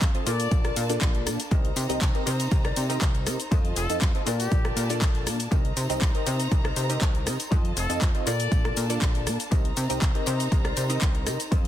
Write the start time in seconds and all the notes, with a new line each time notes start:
Already playing: F4 D#5 A5
0.01 F2, kick, clap, closed hi-hat, shaker
0.14 C4 D#4 F4 A4 D#5, muted clean electric guitar stroke, closed hi-hat
0.26 A#2 A#3 D4 F4 A4 A#4 D5, open hi-hat, tambourine, shaker
0.40 closed hi-hat, tambourine, shaker
0.51 A#1 A#3 D4 F4 A4 D5, kick, closed hi-hat, tambourine, shaker
0.64 F4 A4 A#4 D5, cross-stick, closed hi-hat
0.76 A#2, open hi-hat, tambourine, shaker
0.89 A#3 D4 F4 A4 D5, closed hi-hat, tambourine, shaker
1.01 A#1 F4 A4 A#4 D5, kick, clap, closed hi-hat, tambourine, shaker
1.15 closed hi-hat
1.26 A#2 A#3 D4 F4 A4 D5, cross-stick, open hi-hat, tambourine, shaker
1.40 closed hi-hat, tambourine, shaker
1.51 C2 C4 D#4 G4 A#4 C5 D#5 A#5, kick, closed hi-hat, tambourine, shaker
1.65 closed hi-hat
1.76 C3, open hi-hat, tambourine, shaker
1.89 C2 C4 D#4 G4 A#4 D#5, closed hi-hat, tambourine, shaker
2.01 C2, kick, clap, closed hi-hat, tambourine, shaker
2.14 C4 D#4 G4 A#4 D#5, muted clean electric guitar stroke, closed hi-hat
2.26 C3 G4 A#4 C5 D#5, open hi-hat, tambourine, shaker
2.40 closed hi-hat, tambourine, shaker
2.51 C2 C4 D#4 G4 A#4 D#5, kick, closed hi-hat, tambourine, shaker
2.64 G4 A#4 C5 D5, cross-stick, closed hi-hat
2.76 C3, open hi-hat, tambourine, shaker
2.89 C4 D#4 G4 A#4 D#5, closed hi-hat, tambourine, shaker
3.01 C2 G4 A#4 C5 D#5, kick, clap, closed hi-hat, shaker
3.15 closed hi-hat
3.26 C3 C4 D#4 G4 A#4 D#5, cross-stick, open hi-hat, tambourine, shaker
3.40 closed hi-hat, tambourine, shaker
3.51 F2 C4 D#4 F4 A4 C5 D#5 A5, kick, closed hi-hat, tambourine, shaker
3.65 closed hi-hat
3.76 F1 A4, open hi-hat, tambourine, shaker
3.89 F2 C4 D#4 F4 A4 D#5, closed hi-hat, tambourine, shaker
4.02 F2, kick, clap, closed hi-hat, tambourine, shaker
4.14 C4 D#4 F4 A4 D#5, muted clean electric guitar stroke, closed hi-hat
4.26 A#2 A#3 D4 F4 A4 A#4 D5 A5, open hi-hat, tambourine, shaker
4.39 G4, closed hi-hat, tambourine, shaker
4.51 A#1 A#3 D4 F4 A4 D5, kick, closed hi-hat, shaker
4.64 F4 A4 A#4 D5, cross-stick, closed hi-hat
4.76 A#2, open hi-hat, tambourine, shaker
4.89 A#3 D4 F4 A4 D5, closed hi-hat, tambourine, shaker
5.01 A#1 F4 A4 A#4 D5, kick, clap, closed hi-hat, tambourine, shaker
5.15 closed hi-hat
5.26 A#2 A#3 D4 F4 A4 D5, cross-stick, open hi-hat, tambourine, shaker
5.40 closed hi-hat, tambourine, shaker
5.51 C2 C4 D#4 G4 A#4 C5 D#5 A#5, kick, closed hi-hat, tambourine, shaker
5.65 closed hi-hat
5.77 C3, open hi-hat, tambourine, shaker
5.89 C2 C4 D#4 G4 A#4 D#5, closed hi-hat, tambourine, shaker
6.02 C2, kick, clap, closed hi-hat, tambourine, shaker
6.14 C4 D#4 G4 A#4 D#5, muted clean electric guitar stroke, closed hi-hat
6.26 C3 G4 A#4 C5 D#5, open hi-hat, tambourine, shaker
6.40 closed hi-hat, tambourine, shaker
6.51 C2 C4 D#4 G4 A#4 D#5, kick, closed hi-hat, tambourine, shaker
6.64 G4 A#4 C5 D#5, cross-stick, closed hi-hat
6.76 C3, open hi-hat, tambourine, shaker
6.89 C4 D#4 G4 A#4 D#5, closed hi-hat, tambourine, shaker
7.01 C2 G4 A#4 C5 D#5, kick, clap, closed hi-hat, shaker
7.15 closed hi-hat
7.26 C3 C4 D#4 G4 A#4 D#5, cross-stick, open hi-hat, tambourine, shaker
7.40 closed hi-hat, tambourine, shaker
7.51 F2 C4 D#4 F4 A4 C5 D#5 A5, kick, closed hi-hat, tambourine, shaker
7.65 closed hi-hat
7.77 F1 A4, open hi-hat, tambourine, shaker
7.89 F2 C4 D#4 F4 A4 D#5, closed hi-hat, tambourine, shaker
8.02 F2, kick, clap, closed hi-hat, shaker
8.14 C4 D#4 F4 A4 D#5, muted clean electric guitar stroke, closed hi-hat
8.26 A#2 A#3 D4 F4 A4 A#4 D5 A5, open hi-hat, tambourine, shaker
8.40 closed hi-hat, tambourine, shaker
8.51 A#1 A#3 D4 F4 A4 D5, kick, closed hi-hat, tambourine, shaker
8.64 F4 A4 A#4 D5, cross-stick, closed hi-hat
8.76 A#2, open hi-hat, tambourine, shaker
8.89 A#3 D4 F4 A4 D5, closed hi-hat, tambourine, shaker
9.01 A#1 F4 A4 A#4 D5, kick, clap, closed hi-hat, shaker
9.15 closed hi-hat
9.26 A#2 A#3 D4 F4 A4 D5, cross-stick, open hi-hat, tambourine, shaker
9.40 closed hi-hat, tambourine, shaker
9.51 C2 C4 D#4 G4 A#4 C5 D#5 A#5, kick, closed hi-hat, tambourine, shaker
9.65 closed hi-hat
9.76 C3, open hi-hat, tambourine, shaker
9.89 C2 C4 D#4 G4 A#4 D#5, closed hi-hat, tambourine, shaker
10.02 C2, kick, clap, closed hi-hat, shaker
10.14 C4 D#4 G4 A#4 D#5, muted clean electric guitar stroke, closed hi-hat
10.26 C3 G4 A#4 C5 D#5, open hi-hat, tambourine, shaker
10.40 closed hi-hat, tambourine, shaker
10.51 C2 C4 D#4 G4 A#4 D#5, kick, closed hi-hat, tambourine, shaker
10.64 G4 A#4 C5 D5, cross-stick, closed hi-hat
10.77 C3, open hi-hat, tambourine, shaker
10.89 C4 D#4 G4 A#4 D#5, closed hi-hat, tambourine, shaker
11.01 C2 G4 A#4 C5 D#5, kick, clap, closed hi-hat, shaker
11.15 closed hi-hat
11.26 C3 C4 D#4 G4 A#4 D#5, cross-stick, open hi-hat, tambourine, shaker
11.40 closed hi-hat, tambourine, shaker
11.51 F2 C4 D#4 F4 A4 C5 D#5 A5, kick, closed hi-hat, tambourine, shaker